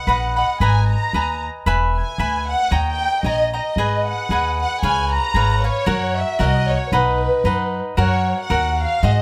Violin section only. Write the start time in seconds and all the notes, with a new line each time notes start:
Already playing: F#5
0.38 F#5
0.61 G#5
0.90 A#5
1.96 G#5
2.49 F#5
2.73 G5
2.87 G5
3.26 D#5
3.55 D#5
4.07 F#5
4.61 F#5
4.84 G#5
5.13 A#5
5.65 C#5
6.17 E5
6.41 D#5
6.69 C#5
6.94 B4
7.99 C#5
8.41 F#5
8.81 F5
9.07 D#5